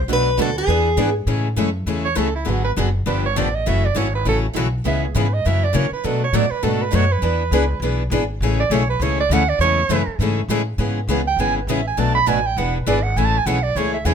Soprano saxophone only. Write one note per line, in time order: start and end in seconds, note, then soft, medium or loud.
2.05 2.19 C#5 medium
2.17 2.35 A4 medium
2.35 2.51 E4 medium
2.50 2.64 F#4 medium
2.65 2.72 B4 medium
3.07 3.23 B4 medium
3.26 3.40 C#5 medium
3.38 3.56 D5 medium
3.55 3.69 D#5 medium
3.67 3.87 E5 medium
3.85 3.99 D5 medium
3.98 4.14 C#5 medium
4.15 4.26 B4 medium
4.29 4.38 A4 medium
4.88 5.03 E5 medium
5.05 5.19 G#4 soft
5.18 5.35 B4 medium
5.34 5.48 D#5 loud
5.46 5.65 E5 loud
5.64 5.78 D5 medium
5.76 5.93 C#5 medium
5.93 6.07 B4 medium
6.05 6.22 A4 medium
6.24 6.38 C#5 medium
6.36 6.52 D5 medium
6.51 6.65 B4 medium
6.64 6.83 A4 medium
6.82 6.97 B4 medium
6.96 7.14 C#5 loud
7.12 7.83 B4 medium
8.60 8.74 D5 medium
8.72 8.89 C#5 medium
8.90 9.04 B4 medium
9.03 9.19 C#5 medium
9.21 9.35 D5 loud
9.33 9.51 F#5 loud
9.49 9.61 D5 medium
9.61 10.16 C#5 loud
11.28 11.42 G5 medium
11.40 11.56 G#5 loud
11.57 11.72 B4 soft
11.70 11.87 E5 medium
11.87 12.01 G#5 medium
12.00 12.15 A5 medium
12.15 12.30 B5 loud
12.28 12.48 G#5 medium
12.46 12.59 G5 loud
12.58 12.75 F#5 medium
12.76 12.89 B4 medium
12.87 13.05 D5 medium
13.03 13.19 F#5 medium
13.17 13.27 G#5 medium
13.25 13.39 A5 loud
13.38 13.48 G#5 medium
13.46 13.65 F#5 medium
13.63 13.78 D5 medium
13.77 13.94 C#5 medium
13.94 14.07 E5 medium
14.06 14.14 G#5 medium